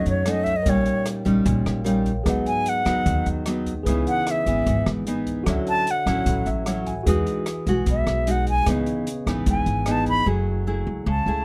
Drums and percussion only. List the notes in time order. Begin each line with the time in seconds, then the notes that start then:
0.06 closed hi-hat
0.26 cross-stick, closed hi-hat
0.46 kick, closed hi-hat
0.66 kick, closed hi-hat
0.86 closed hi-hat
1.06 cross-stick, closed hi-hat
1.26 kick, closed hi-hat
1.46 kick, closed hi-hat
1.66 cross-stick, closed hi-hat
1.86 closed hi-hat
2.06 kick, closed hi-hat
2.26 kick, cross-stick, closed hi-hat
2.46 closed hi-hat
2.66 closed hi-hat
2.86 kick, cross-stick, closed hi-hat
3.06 kick, closed hi-hat
3.26 closed hi-hat
3.46 cross-stick, closed hi-hat
3.66 kick, closed hi-hat
3.86 kick, closed hi-hat
4.07 closed hi-hat
4.27 cross-stick, closed hi-hat
4.46 kick, closed hi-hat
4.67 kick, closed hi-hat
4.86 cross-stick, closed hi-hat
5.07 closed hi-hat
5.26 kick, closed hi-hat
5.46 kick, cross-stick, closed hi-hat
5.67 closed hi-hat
5.87 closed hi-hat
6.06 kick, cross-stick, closed hi-hat
6.26 kick, closed hi-hat
6.46 closed hi-hat
6.66 cross-stick, closed hi-hat
6.86 kick, closed hi-hat
7.06 kick, closed hi-hat
7.27 closed hi-hat
7.46 cross-stick, closed hi-hat
7.67 kick, closed hi-hat
7.86 kick, closed hi-hat
8.07 cross-stick, closed hi-hat
8.27 closed hi-hat
8.47 kick, closed hi-hat
8.66 kick, cross-stick, closed hi-hat
8.86 closed hi-hat
9.07 closed hi-hat
9.27 kick, cross-stick, closed hi-hat
9.46 kick, closed hi-hat
9.66 closed hi-hat
9.86 cross-stick, closed hi-hat
10.06 kick, closed hi-hat